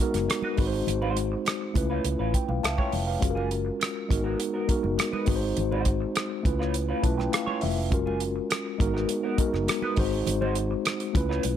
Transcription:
Already playing: A#4
0.00 G#3 B3 D#4 F#4 A#4, muted clean electric guitar stroke, muted conga
0.14 F#1, muted clean electric guitar stroke, cross-stick, closed hi-hat, high conga
0.29 muted clean electric guitar stroke, cross-stick, closed hi-hat
0.42 B3 F#4 B4, high conga
0.57 G#1 G#3 C4 D#4 F#4 B4, muted clean electric guitar stroke, kick, open hi-hat, muted conga, high conga, low conga
0.67 C5
0.73 muted clean electric guitar stroke
0.87 G#1, muted clean electric guitar stroke, closed hi-hat, low conga
1.02 D#4 F#4 C5, high conga
1.16 muted clean electric guitar stroke, closed hi-hat, muted conga
1.32 muted clean electric guitar stroke
1.45 muted clean electric guitar stroke, cross-stick, closed hi-hat, muted conga
1.61 muted clean electric guitar stroke
1.74 C#2 A3 C#4 E4 F4 B4, kick, closed hi-hat, high conga, low conga
1.90 C#4 F4 B4
2.04 C#2, muted clean electric guitar stroke, closed hi-hat, muted conga, high conga
2.19 A1 C#4 F4 B4
2.34 G5, muted clean electric guitar stroke, kick, closed hi-hat, muted conga
2.48 B1 B4 F5, muted clean electric guitar stroke, high conga
2.63 C#2 E5 F5 A5, muted clean electric guitar stroke, cross-stick, closed hi-hat, muted conga
2.78 C#4 F4 C#5 G5, kick, high conga
2.92 F1, muted clean electric guitar stroke, open hi-hat, muted conga, high conga, low conga
3.07 B4 F5, muted clean electric guitar stroke
3.20 F#1 G#3 C#4 F4 F#4 G#4, muted clean electric guitar stroke, kick, closed hi-hat, muted conga, low conga
3.30 A#4
3.35 A#3 F4 G#4, high conga
3.50 muted clean electric guitar stroke, closed hi-hat, muted conga
3.65 muted clean electric guitar stroke
3.80 muted clean electric guitar stroke, cross-stick, closed hi-hat, muted conga
3.94 muted clean electric guitar stroke
4.08 G#1 G#3 B3 D#4 F#4 A#4, kick, closed hi-hat, high conga, low conga
4.24 B3 F#4 A#4
4.39 muted clean electric guitar stroke, closed hi-hat
4.54 B3 F#4 A#4
4.67 G#3 B3 D#4 F#4 A#4, muted clean electric guitar stroke, muted fingered electric bass stroke, kick, closed hi-hat
4.83 F#1, muted clean electric guitar stroke, high conga
4.98 muted clean electric guitar stroke, cross-stick, closed hi-hat
5.13 B3 F#4 B4, high conga
5.25 G#1 G#3 C4 D#4 F#4, muted clean electric guitar stroke, kick, open hi-hat, muted conga, high conga, low conga
5.29 B4
5.35 C5
5.42 muted clean electric guitar stroke
5.57 G#1, muted clean electric guitar stroke, closed hi-hat, muted conga, low conga
5.71 D#4 F#4 C5, high conga
5.85 muted clean electric guitar stroke, kick, closed hi-hat
6.01 muted clean electric guitar stroke
6.15 muted clean electric guitar stroke, cross-stick, closed hi-hat
6.30 muted clean electric guitar stroke
6.43 C#2 A3 C#4 E4 F4 B4, kick, closed hi-hat, muted conga, high conga, low conga
6.59 C#4 F4 B4, cross-stick
6.74 muted clean electric guitar stroke, closed hi-hat
6.89 C#4 F4 B4
7.02 B1 A3 C#4 E4 F4 B4 A5, muted clean electric guitar stroke, kick, closed hi-hat, muted conga
7.18 G5, muted clean electric guitar stroke, cross-stick, high conga
7.32 F5, muted clean electric guitar stroke, cross-stick, closed hi-hat
7.46 C#4 F4 C#5, high conga
7.61 F1 E5, muted clean electric guitar stroke, open hi-hat, high conga, low conga
7.76 muted clean electric guitar stroke
7.90 F#1 G#3 C#4 F4 F#4 A#4, muted clean electric guitar stroke, kick, closed hi-hat, muted conga, low conga
8.06 A#3 F4 G#4, high conga
8.20 muted clean electric guitar stroke, closed hi-hat, muted conga
8.36 muted clean electric guitar stroke
8.50 muted clean electric guitar stroke, cross-stick, closed hi-hat, muted conga
8.65 muted clean electric guitar stroke
8.78 G#1 G#3 B3 D#4 F#4 A#4, kick, closed hi-hat, high conga, low conga
8.94 B3 F#4 A#4, cross-stick
9.09 muted clean electric guitar stroke, closed hi-hat, muted conga
9.23 B3 F#4 A#4
9.37 G#3 B3 D#4 F#4 A#4, muted fingered electric bass stroke, muted clean electric guitar stroke, kick, closed hi-hat
9.53 F#1, muted clean electric guitar stroke, cross-stick, high conga
9.68 muted clean electric guitar stroke, cross-stick, closed hi-hat
9.82 B3 F#4 B4, high conga
9.96 G#1 G#3 C4 D#4 F#4 C5, muted clean electric guitar stroke, kick, open hi-hat, muted conga, high conga, low conga
10.11 muted clean electric guitar stroke
10.27 G#1, muted clean electric guitar stroke, closed hi-hat, muted conga, low conga
10.41 D#4 F#4 C5, high conga
10.55 muted clean electric guitar stroke, closed hi-hat
10.71 muted clean electric guitar stroke
10.85 muted clean electric guitar stroke, cross-stick, closed hi-hat, muted conga
11.00 muted clean electric guitar stroke, closed hi-hat
11.13 C#2 A3 C#4 E4 F4 B4, kick, closed hi-hat, muted conga, high conga, low conga
11.29 C#4 F4 B4, cross-stick
11.43 B1, muted clean electric guitar stroke, closed hi-hat, muted conga, high conga

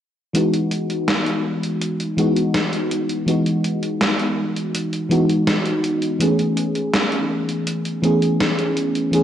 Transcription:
0.33 E3 G#3 B3 D#4 F#4, closed hi-hat
0.54 closed hi-hat
0.71 closed hi-hat
0.90 closed hi-hat
1.08 snare, closed hi-hat
1.26 closed hi-hat
1.63 closed hi-hat
1.82 closed hi-hat
2.00 closed hi-hat
2.17 E3 G#3 B3 D#4 F#4, closed hi-hat
2.36 closed hi-hat
2.54 snare, closed hi-hat
2.73 closed hi-hat
2.91 closed hi-hat
3.09 closed hi-hat
3.26 E3 G#3 B3 D#4 F#4, closed hi-hat
3.46 closed hi-hat
3.64 closed hi-hat
3.83 closed hi-hat
4.01 snare, closed hi-hat
4.19 closed hi-hat
4.56 closed hi-hat
4.75 closed hi-hat
4.93 closed hi-hat
5.09 E3 G#3 B3 D#4 F#4, closed hi-hat
5.30 closed hi-hat
5.47 snare, closed hi-hat
5.66 closed hi-hat
5.84 closed hi-hat
6.02 closed hi-hat
6.19 E3 A3 B3 C#4 G#4, closed hi-hat
6.39 closed hi-hat
6.57 closed hi-hat
6.75 closed hi-hat
6.93 snare, closed hi-hat
7.12 closed hi-hat
7.49 closed hi-hat
7.67 closed hi-hat
7.85 closed hi-hat
8.02 E3 A3 B3 C#4 G#4, closed hi-hat
8.22 closed hi-hat
8.40 snare, closed hi-hat
8.59 closed hi-hat
8.77 closed hi-hat
8.95 closed hi-hat
9.11 E3 A3 B3 C#4 G#4, closed hi-hat

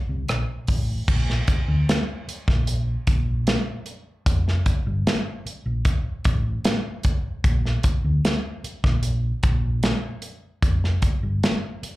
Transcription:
0.09 C2
0.28 A#1, cross-stick, closed hi-hat
0.67 A1, kick, open hi-hat
1.08 A#1, kick, crash
1.30 snare
1.48 kick, closed hi-hat
1.68 D2
1.89 snare, closed hi-hat
2.28 muted fingered electric bass stroke, closed hi-hat
2.48 A#1, kick, snare
2.67 closed hi-hat
3.07 A#1, kick, closed hi-hat
3.47 snare, closed hi-hat
3.86 closed hi-hat
4.26 F1, kick, closed hi-hat
4.48 snare
4.66 kick, closed hi-hat
4.86 G1
5.07 snare, closed hi-hat
5.46 muted fingered electric bass stroke, closed hi-hat
5.66 A#1
5.85 kick, closed hi-hat
6.25 A1, kick, closed hi-hat
6.65 snare, closed hi-hat
7.03 kick, closed hi-hat
7.44 A#1, kick, closed hi-hat
7.65 snare
7.83 kick, closed hi-hat
8.04 D2
8.25 snare, closed hi-hat
8.64 muted fingered electric bass stroke, closed hi-hat
8.84 A#1, kick, snare
9.03 closed hi-hat
9.43 A#1, kick, closed hi-hat
9.83 snare, closed hi-hat
10.22 closed hi-hat
10.62 F1, kick, closed hi-hat
10.84 snare
11.02 kick, closed hi-hat
11.23 G1
11.43 snare, closed hi-hat
11.83 muted fingered electric bass stroke, closed hi-hat

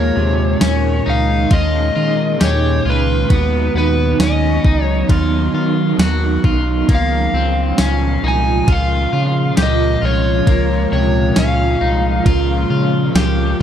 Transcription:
Already playing: D#2 A#2 D#3 G#3 A#3 D#4 G#4 A#4 C#5
0.16 D#2 C3
0.61 D#2 C#4, snare, ride, tambourine
1.06 C#2 D#4 F5
1.50 D#2 G#3 C#4 F4 G#4 D#5, kick, ride
1.55 A#4
1.96 D#3 F4
2.39 D#2 G#3 C#4 G4 G#4, snare, ride, tambourine
2.44 C#5
2.85 C#2 F4
2.90 B4
3.28 D#2 D#3 F#3 B3 D#4, kick, ride
3.32 D#4 F#4
3.75 D#2 B3 B4
4.20 D#2 C#4 D#5, snare, ride, tambourine
4.65 C#2 D#4, kick
4.83 C#5
5.07 D#2 B3 D#4 F4 F#4, kick, ride
5.12 A#4
5.54 D#3 F4
5.97 D#2 B3 D#4 F#4, snare, ride, tambourine
6.01 F#4 A#4
6.44 B1 F4, kick
6.88 C#2 A#2 F3 G#3 A#3 C#4 F4, kick, ride
6.93 F4 A#4 F5
7.33 C#2 C4
7.78 C#2 C#4, snare, ride, tambourine
8.23 C2 D#4
8.28 G#5
8.67 C#2 G#3 C#4 F4, kick, ride
8.72 A#4 F5
9.13 C#3 F4
9.56 C#2 G#3 C#4 F4 G4, snare, ride, tambourine
9.61 A#4 D#5
10.02 C2 F4 C#5
10.46 C#2 F3 G#3 A#3, kick, ride
10.51 F4 A#4
10.91 C#2 C3 C#5
11.36 C#2 C#4 F5, snare, ride, tambourine
11.81 C2 D#4
12.24 C#2 G#3 C#4 F4, kick, ride
12.29 A#4
12.70 C#3 F4
13.13 C#2 G#3 C#4 F4 G4, snare, ride, tambourine
13.18 A#4

